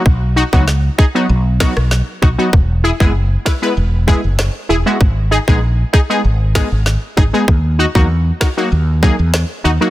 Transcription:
<<
  \new Staff \with { instrumentName = "Synth stab" } { \time 4/4 \key gis \minor \tempo 4 = 97 r8 <dis' fis'>16 <fis b dis' fis'>16 r8 <dis' gis'>16 <fis b dis' fis'>16 r8 <fis b dis' fis'>16 r8. <dis' fis'>16 <fis b dis' fis'>16 | r8 <e' gis'>16 <gis b e' gis'>16 r8 <e' b'>16 <gis b e' b'>16 r8 <gis b e' gis'>16 r8. <e' gis'>16 <gis b e' fis'>16 | r8 <dis' gis'>16 <gis b dis' gis'>16 r8 <dis' gis'>16 <gis b dis' gis'>16 r8 <gis b dis' gis'>16 r8. <dis' gis'>16 <gis b dis' gis'>16 | r8 <dis' fis'>16 <fis ais dis' fis'>16 r8 <dis' fis'>16 <fis ais dis' fis'>16 r8 <fis ais dis' gis'>16 r8. <dis' fis'>16 <fis ais dis' fis'>16 | }
  \new Staff \with { instrumentName = "Fretless electric bass" } { \clef bass \time 4/4 \key gis \minor b,,8. cis,8. r8 b,,8. b,,8 r16 b,,16 r16 | e,,8. fis,,8. r8 e,,8. fis,,8 r16 e,,16 r16 | gis,,8. ais,,8. r8 gis,,8. gis,,8 r16 gis,,16 r16 | dis,8. e,8. r8 dis,8. e,8 r16 dis,16 r16 | }
  \new DrumStaff \with { instrumentName = "Drums" } \drummode { \time 4/4 bd8. bd16 sn8 bd8 r8 <bd ss sn>16 ss16 sn8 bd8 | bd8. bd16 r8 <bd ss sn>8 r8 bd8 <ss sn>4 | bd8. bd16 r8 bd8 r8 <bd ss sn>8 sn8 bd8 | bd8. bd16 r8 <bd ss sn>8 r8 bd8 <ss sn>4 | }
>>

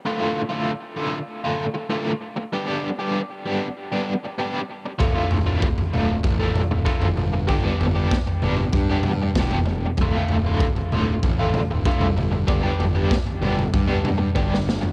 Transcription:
<<
  \new Staff \with { instrumentName = "Overdriven electric guitar" } { \time 4/4 \key g \mixolydian \tempo 4 = 96 <a, d a f'>16 <a, d a f'>16 r16 <a, d a f'>16 r8 <a, d a f'>16 r8 <a, d a f'>16 r8 <a, d a f'>16 r8. | <g b d' g'>16 <g b d' g'>16 r16 <g b d' g'>16 r8 <g b d' g'>16 r8 <g b d' g'>16 r8 <g b d' g'>16 r8. | <a, d a f'>16 <a, d a f'>16 r16 <a, d a f'>16 r8 <a, d a f'>16 r8 <a, d a f'>16 r8 <a, d a f'>16 r8. | <g b d' g'>16 <g b d' g'>16 r16 <g b d' g'>16 r8 <g b d' g'>16 r8 <g b d' g'>16 r8 <g b d' g'>16 r8. |
<a, d a f'>16 <a, d a f'>16 r16 <a, d a f'>16 r8 <a, d a f'>16 r8 <a, d a f'>16 r8 <a, d a f'>16 r8. | <g b d' g'>16 <g b d' g'>16 r16 <g b d' g'>16 r8 <g b d' g'>16 r8 <g b d' g'>16 r8 <g b d' g'>16 r8. | }
  \new Staff \with { instrumentName = "Picked electric bass" } { \clef bass \time 4/4 \key g \mixolydian r1 | r1 | d,,16 r16 d,,4 d,,8 a,,8. d,,16 r16 fis,,16 g,,8~ | g,,8 g,,8 r8 g,,8 g,8 g,8 e,,4 |
d,,16 r16 d,,4 d,,8 a,,8. d,,16 r16 c,16 g,,8~ | g,,8 g,,8 r8 g,,8 g,8 g,8 g,,4 | }
  \new DrumStaff \with { instrumentName = "Drums" } \drummode { \time 4/4 r4 r4 r4 r4 | r4 r4 r4 r4 | <bd tomfh>8 tomfh8 bd16 tomfh16 toml8 <bd tomfh>8 <tomfh toml>8 bd16 tomfh16 toml8 | <bd tomfh>8 tomfh8 <bd sn>16 tomfh16 toml16 toml16 <bd tomfh>8 <tomfh toml>8 <bd sn>16 tomfh16 toml8 |
<bd tomfh>8 tomfh8 bd16 tomfh16 toml8 <bd tomfh>8 <tomfh toml>8 bd16 tomfh16 toml8 | <bd tomfh>8 tomfh8 <bd sn>16 tomfh16 toml16 toml16 <bd tomfh>8 <tomfh toml>8 <bd tommh>16 sn16 sn16 tomfh16 | }
>>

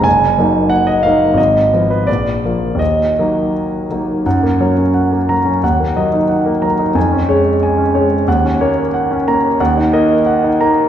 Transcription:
<<
  \new Staff \with { instrumentName = "Grand piano" } { \time 2/4 \key ees \minor \tempo 4 = 90 aes''4 ges''16 ees''16 f''8 | ees''8. ces''16 d''4 | ees''4 r4 | \key fis \major fis''8 cis''8 fis''8 ais''8 |
fis''8 dis''8 fis''8 ais''8 | gis''8 cis''8 gis''8 cis''8 | fis''8 cis''8 fis''8 ais''8 | \key ees \minor ges''8 ees''8 ges''8 bes''8 | }
  \new Staff \with { instrumentName = "Grand piano" } { \time 2/4 \key ees \minor ges,,8 <ges bes ees'>4 <ges bes ees'>8 | aes,,8 <f ces' f'>8 bes,,8 <f bes f'>8 | ees,8 <ges bes ees'>4 <ges bes ees'>8 | \key fis \major fis,16 ais16 fis16 cis'8 ais16 fis16 cis'16 |
dis,16 ais16 fis16 dis'8 ais16 fis16 dis'16 | eis,16 cis'16 gis8 r16 cis'16 gis8 | dis,16 cis'16 ais8 r16 cis'16 ais8 | \key ees \minor ees,16 ees'16 bes8 r16 ees'16 bes8 | }
>>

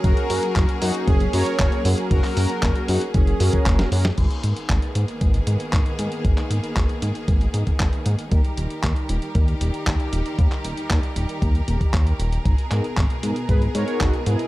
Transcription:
<<
  \new Staff \with { instrumentName = "Analog polysynth" } { \time 4/4 \key gis \minor \tempo 4 = 116 <cis' fis' gis' ais'>8 <cis' fis' gis' ais'>16 r8. <cis' fis' gis' ais'>16 r8. <cis' fis' gis' ais'>4 <cis' fis' gis' ais'>8~ | <cis' fis' gis' ais'>8 <cis' fis' gis' ais'>16 r8. <cis' fis' gis' ais'>16 r8. <cis' fis' gis' ais'>4 <cis' fis' gis' ais'>16 r16 | r1 | r1 |
r1 | r1 | r8 <b dis' gis' ais'>16 r8. <b dis' gis' ais'>16 r8. <b dis' gis' ais'>4 <b gis' ais' dis''>8 | }
  \new Staff \with { instrumentName = "Analog polysynth" } { \time 4/4 \key gis \minor <fis' ais'>4. <dis' fis'>8 <cis' gis'>8 <ais' cis''>4 r8 | <fis' ais'>4. <dis' fis'>8 <cis' gis'>4. r8 | r1 | r1 |
r1 | r1 | r2 <gis' b'>8 <ais' cis''>8 <dis' fis'>8 <e' gis'>8 | }
  \new Staff \with { instrumentName = "String section" } { \time 4/4 \key gis \minor <fis ais cis' gis'>1~ | <fis ais cis' gis'>1 | <dis ais b gis'>1~ | <dis ais b gis'>1 |
<dis g g' ais'>1~ | <dis g g' ais'>1 | <b, b gis'>1 | }
  \new Staff \with { instrumentName = "Analog synth bass" } { \clef bass \time 4/4 \key gis \minor fis,,8 fis,8 fis,,8 fis,8 fis,,8 fis,8 fis,,8 fis,8 | fis,,8 fis,8 fis,,8 fis,8 fis,,8 fis,8 fis,,8 fis,8 | gis,,8 gis,8 gis,,8 gis,8 gis,,8 gis,8 gis,,8 gis,8 | gis,,8 gis,8 gis,,8 gis,8 gis,,8 gis,8 gis,,8 gis,8 |
dis,8 dis,,8 dis,8 dis,,8 dis,8 dis,,8 dis,8 dis,,8 | dis,8 dis,,8 dis,8 dis,,8 dis,8 dis,,8 dis,8 dis,,8 | gis,,8 gis,8 gis,,8 gis,8 gis,,8 gis,8 gis,,8 gis,8 | }
  \new DrumStaff \with { instrumentName = "Drums" } \drummode { \time 4/4 <hh bd>16 hh16 hho16 hh16 <hc hh bd>16 hh16 hho16 hh16 <hh bd>16 hh16 hho16 hh16 <hc hh bd>16 hh16 hho16 hh16 | <hh bd>16 <hc hho>16 hho16 hh16 <hc hh bd>16 hh16 hho16 hh16 <hh bd>16 hh16 hho16 <hh bd>16 <hc hh bd>16 <hh sn>16 hho16 sn16 | <cymc hh bd>16 hh16 hh16 hh16 <hc hh bd>16 hh16 hh16 hh16 <hh bd>16 hh16 hh16 hh16 <hc hh bd>16 hh16 hh16 hh16 | <hh bd>16 <hc hh>16 hh16 hh16 <hc hh bd>16 hh16 hh16 hh16 <hh bd>16 hh16 hh16 <hh bd>16 <hc hh bd>16 hh16 hh16 hh16 |
<hh bd>16 hh16 hh16 hh16 <hc hh bd>16 hh16 hh16 hh16 <hh bd>16 hh16 hh16 hh16 <hc hh bd>16 hh16 hh16 hh16 | <hh bd>16 <hc hh>16 hh16 hh16 <hc hh bd>16 hh16 hh16 hh16 <hh bd>16 hh16 hh16 <hh bd>16 <hc hh bd>16 hh16 hh16 hh16 | <hh bd>16 hh16 <hc hh>16 hh16 <hc hh bd>16 hh16 hh16 hh16 <hh bd>16 hh16 hh16 hh16 <hc hh bd>16 hh16 hh16 hh16 | }
>>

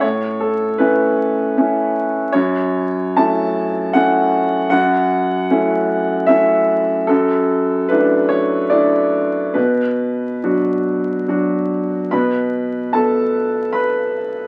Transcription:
\new Staff \with { instrumentName = "Grand piano" } { \time 3/4 \key b \minor \tempo 4 = 75 << { cis''8 a'8 b'4. r8 | cis''4 a''4 fis''4 | fis''2 e''4 | a'4 b'8 cis''8 d''4 |
b'2~ b'8 r8 | <b' b''>4 <a' a''>4 <b' b''>4 | } \\ { a,4 <a cis' e'>4 <a cis' e'>4 | fis,4 <a cis' e'>4 <a cis' e'>4 | fis,4 <a cis' e'>4 <a cis' e'>4 | fis,4 <a d' e'>4 <a d' e'>4 |
b,4 <fis d' fis'>4 <fis d' fis'>4 | b,4 b2 | } >> }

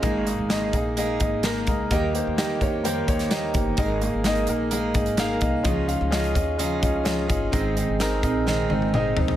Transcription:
<<
  \new Staff \with { instrumentName = "Grand piano" } { \time 4/4 \key aes \major \tempo 4 = 128 <bes ees' aes' ees''>8 <bes ees' aes' ees''>8 <bes ees' aes' ees''>8 <bes ees' aes' ees''>8 <bes ees' aes' ees''>8 <bes ees' aes' ees''>8 <bes ees' aes' bes'>8 <bes ees' aes' ees''>8 | <bes ees' g' ees''>8 <bes ees' g' c''>8 <bes ees' g' ees''>8 <bes ees' g' des''>8 <bes ees' g' c''>8 <bes ees' g' des''>8 <bes ees' g' ees''>8 <bes ees' g' ees''>8 | <bes ees' aes' ees''>8 <bes ees' aes' ees''>8 <bes ees' aes' ees''>8 <bes ees' aes' bes'>8 <bes ees' aes' ees''>8 <bes ees' aes' ees''>8 <bes ees' aes' f''>8 <bes ees' aes' ees''>8 | <des' f' aes' ees''>8 <des' f' aes' f''>8 <des' f' aes' ees''>8 <des' f' aes' ees''>8 <des' f' aes' ees''>8 <des' f' aes' ees''>8 <des' f' aes' ees''>8 <des' f' aes' ees''>8 |
<c' ees' aes' ees''>8 <c' ees' aes' ees''>8 <c' ees' aes' bes'>8 <c' ees' aes' ees''>8 <c' ees' aes' ees''>8 <c' ees' aes' ees''>8 <c' ees' aes' ees''>8 <c' ees' aes' ees''>8 | }
  \new Staff \with { instrumentName = "Grand piano" } { \clef bass \time 4/4 \key aes \major aes,4. r2 r8 | ees4. r2 r8 | aes,4. r2 r8 | des4. r2 r8 |
aes,4. r2 r8 | }
  \new Staff \with { instrumentName = "Steel-string acoustic guitar" } { \time 4/4 \key aes \major <aes bes ees' aes'>4 <aes bes ees' aes'>8 <bes ees' aes'>8 <aes bes ees' aes'>4 <aes bes ees' aes'>4 | <ees g bes ees' g'>4 <g bes ees' g'>8 <bes ees' g'>8 <ees g bes ees' g'>4 <g bes ees' g'>4 | <aes bes ees' aes'>4 <aes bes ees' aes'>8 <bes ees' aes'>8 <aes bes ees' aes'>4 <aes bes ees' aes'>8 <bes ees' aes'>8 | <des f des' ees' aes'>4 <f des' ees' aes'>8 <des' ees' aes'>8 <des f des' ees' aes'>4 <f des' ees' aes'>8 <des' ees' aes'>8 |
<aes, ees aes c' ees' aes'>4 <aes c' ees' aes'>8 <aes c' ees' aes'>8 <aes, ees aes c' ees' aes'>4 <aes c' ees' aes'>4 | }
  \new Staff \with { instrumentName = "Upright bass" } { \clef bass \time 4/4 \key aes \major aes,,8. aes,,8. bes,,4 aes,,4 des,8 | ees,8. ees,8. f,4 ees,4 g,,8 | aes,,8. aes,,8. bes,,4 aes,,4 c,8 | des,8. des,8. ees,4 des,4 g,,8 |
aes,,8. aes,,8. bes,,4 aes,,4 des,8 | }
  \new DrumStaff \with { instrumentName = "Drums" } \drummode { \time 4/4 <hh bd>8 hh8 <hh sn>8 <hh bd>8 hh8 <hh bd>8 <hh sn>8 <hh bd>8 | <hh bd>8 hh8 <hh sn>8 <hh bd>8 hh8 <hh bd>16 <hh sn>16 <hh sn>8 <hh bd>8 | <hh bd>8 hh8 <hh sn>16 hh16 hh8 hh8 <hh bd>16 hh16 <hh sn>8 <hh bd>8 | <hh bd>8 hh8 <hh sn>16 hh16 <hh bd>8 hh8 <hh bd>8 <hh sn>8 <hh bd>8 |
<hh bd>8 hh8 <hh sn>8 <hh bd>8 sn8 tommh16 tommh16 toml8 tomfh16 tomfh16 | }
>>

